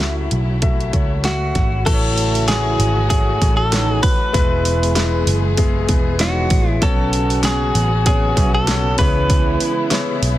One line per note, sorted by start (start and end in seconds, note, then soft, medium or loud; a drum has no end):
0.00 0.27 C#2 medium
0.00 0.27 C#3 medium
0.00 1.83 C#3 medium
0.00 1.84 F#3 medium
0.00 0.62 A3 medium
0.00 1.84 A3 medium
0.00 1.21 E4 medium
0.00 1.84 E4 medium
0.00 0.63 F#4 medium
0.00 0.63 E5 medium
0.00 snare medium
0.31 0.90 B1 medium
0.31 closed hi-hat medium
0.62 0.87 A3 medium
0.62 0.87 F#4 medium
0.62 0.87 E5 medium
0.62 kick medium
0.62 closed hi-hat medium
0.81 closed hi-hat soft
0.93 1.52 C#2 medium
0.93 1.18 A3 medium
0.93 1.18 F#4 medium
0.93 1.18 C#5 medium
0.93 kick medium
0.93 closed hi-hat medium
1.23 1.73 A3 medium
1.23 1.73 F#4 medium
1.23 1.83 F#4 medium
1.23 1.74 E5 medium
1.23 snare medium
1.23 closed hi-hat medium
1.55 1.84 G#1 medium
1.55 kick medium
1.55 snare soft
1.55 closed hi-hat medium
1.85 2.75 A1 medium
1.85 2.75 A2 medium
1.85 4.32 C#3 medium
1.85 3.38 E3 medium
1.85 4.32 F#3 medium
1.85 2.35 A3 medium
1.85 4.32 A3 medium
1.85 2.35 E4 medium
1.85 3.38 E4 medium
1.85 2.35 F#4 medium
1.85 4.32 F#4 medium
1.85 2.48 A4 medium
1.85 1.94 B4 medium
1.85 kick loud
1.85 open hi-hat medium
1.85 crash loud
1.93 2.39 C#5 loud
2.18 open hi-hat medium
2.35 open hi-hat medium
2.48 2.97 A3 medium
2.48 2.97 E4 medium
2.48 2.97 F#4 medium
2.48 3.09 G#4 medium
2.48 2.98 C#5 medium
2.48 snare loud
2.48 open hi-hat medium
2.79 3.37 G#1 medium
2.79 open hi-hat medium
3.10 3.34 A3 medium
3.10 3.35 E4 medium
3.10 3.35 F#4 medium
3.10 3.56 G#4 medium
3.10 3.35 C#5 medium
3.10 kick medium
3.10 open hi-hat loud
3.41 3.99 A1 medium
3.41 3.66 A3 medium
3.41 3.66 E4 medium
3.41 3.66 F#4 medium
3.41 3.66 C#5 medium
3.41 kick medium
3.41 open hi-hat medium
3.57 4.02 A4 medium
3.72 4.03 D#3 medium
3.72 4.21 E3 medium
3.72 4.21 A3 medium
3.72 4.03 D#4 medium
3.72 4.21 F#4 medium
3.72 4.22 C#5 medium
3.72 snare loud
3.72 open hi-hat medium
4.03 5.23 B4 loud
4.03 kick medium
4.03 open hi-hat medium
4.33 5.23 E1 loud
4.33 6.79 B2 medium
4.33 5.23 E3 medium
4.33 5.86 E3 medium
4.33 4.83 G#3 medium
4.33 6.79 G#3 medium
4.33 4.83 B3 medium
4.33 6.79 B3 medium
4.33 4.83 E4 medium
4.33 5.86 E4 loud
4.33 6.79 G#4 medium
4.33 4.83 B4 loud
4.33 kick loud
4.33 open hi-hat medium
4.65 open hi-hat medium
4.83 open hi-hat medium
4.95 5.45 G#3 medium
4.95 5.45 B3 medium
4.95 5.45 E4 medium
4.95 5.45 B4 loud
4.95 snare loud
4.95 open hi-hat medium
5.27 5.85 F#1 medium
5.27 open hi-hat medium
5.57 5.82 G#3 medium
5.57 5.82 B3 medium
5.57 5.82 E4 medium
5.57 5.83 G#4 loud
5.57 kick medium
5.57 open hi-hat loud
5.88 6.47 E1 medium
5.88 6.13 G#3 medium
5.88 6.13 B3 medium
5.88 6.13 E4 medium
5.88 6.14 B4 medium
5.88 kick medium
5.88 open hi-hat medium
6.19 6.50 D#3 medium
6.19 6.69 E3 medium
6.19 6.69 G#3 medium
6.19 6.69 B3 medium
6.19 6.50 D#4 medium
6.19 6.69 F#4 medium
6.19 6.69 C#5 medium
6.19 snare loud
6.19 open hi-hat medium
6.50 6.80 A1 medium
6.50 kick loud
6.50 open hi-hat medium
6.69 6.84 E4 medium
6.81 7.71 B1 loud
6.81 7.71 B2 medium
6.81 10.38 C#3 medium
6.81 8.03 C#3 medium
6.81 8.97 F#3 medium
6.81 7.31 B3 loud
6.81 10.38 B3 medium
6.81 7.31 C#4 medium
6.81 8.03 C#4 medium
6.81 8.97 F#4 medium
6.81 7.31 F#4 medium
6.81 7.40 A4 loud
6.81 7.31 C#5 loud
6.81 kick loud
6.81 open hi-hat medium
7.13 open hi-hat medium
7.30 open hi-hat medium
7.43 7.92 B3 medium
7.43 7.93 C#4 medium
7.43 7.93 F#4 medium
7.43 8.06 G#4 medium
7.43 7.93 C#5 medium
7.43 snare loud
7.43 open hi-hat medium
7.75 8.33 A1 medium
7.75 open hi-hat medium
8.06 8.30 B3 medium
8.06 8.30 C#4 medium
8.06 8.31 F#4 medium
8.06 8.54 G#4 medium
8.06 8.31 C#5 medium
8.06 kick medium
8.06 open hi-hat loud
8.37 8.95 B1 loud
8.37 8.67 F#3 medium
8.37 8.61 B3 medium
8.37 8.62 C#4 medium
8.37 8.67 F#4 medium
8.37 8.62 F#4 medium
8.37 8.62 E5 medium
8.37 kick medium
8.37 open hi-hat medium
8.55 8.98 A4 loud
8.67 8.98 B3 medium
8.67 8.99 C#4 medium
8.67 8.99 F#4 medium
8.67 8.99 C#5 medium
8.67 snare loud
8.67 open hi-hat medium
8.98 9.57 C#2 medium
8.98 9.88 C#3 medium
8.98 10.38 E3 medium
8.98 10.38 G#3 medium
8.98 9.75 B3 medium
8.98 10.38 E4 loud
8.98 9.75 E4 medium
8.98 10.38 E4 medium
8.98 9.75 G#4 medium
8.98 10.19 B4 loud
8.98 9.75 C#5 medium
8.98 kick medium
8.98 open hi-hat medium
9.30 kick loud
9.30 open hi-hat medium
9.60 open hi-hat medium
9.91 10.38 B3 medium
9.91 10.38 E4 medium
9.91 10.38 G#4 medium
9.91 10.38 C#5 loud
9.91 snare loud
9.91 open hi-hat medium
10.23 10.38 B1 medium
10.23 open hi-hat medium